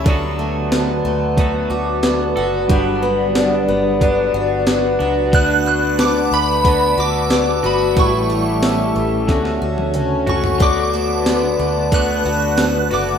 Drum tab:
HH |x---x---x---x---|x---x---x---x---|x---x---x---x---|x---x---x---x---|
TB |----x-------x---|----x-------x---|----x-------x---|----x-----------|
SD |----o-------o---|----o-------o---|----o-------o---|----o---oo------|
T1 |----------------|----------------|----------------|-----------o----|
T2 |----------------|----------------|----------------|------------o---|
FT |----------------|----------------|----------------|--------------oo|
BD |o-------o-------|o-------o-------|o-------o-------|o-------o-------|

HH |x---x---x---x---|
TB |----x-------x---|
SD |----o-------o---|
T1 |----------------|
T2 |----------------|
FT |----------------|
BD |o-------o-------|